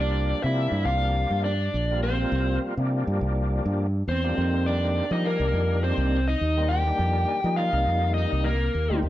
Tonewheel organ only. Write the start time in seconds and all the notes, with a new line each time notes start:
Already playing: F3 G3 A#3 D4
0.45 F3 G3 A#3 D4
1.91 F3 G3 A#3 F4
2.21 F3 G3 A#3 F4
2.78 F3 G3 A#3 D4
4.24 F3 G3 A#3 D4
4.37 D#3 G3 A#3 C4
5.11 D#3 G3 A#3 D4
6.57 D#3 G3 A#3 C4
6.86 D#3 G3 A#3 D4
7.45 D#3 G3 A#3 D#4
8.90 D#3 G3 A#3 C4